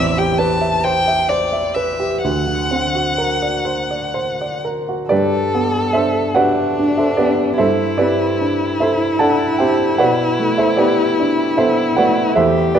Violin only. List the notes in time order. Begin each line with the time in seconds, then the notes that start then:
Already playing: E5
0.18 G5
0.38 A5
0.84 G5
1.28 D5
1.74 E5
2.22 F#5
5.11 A4
6.37 D4
7.58 E4
12.37 G4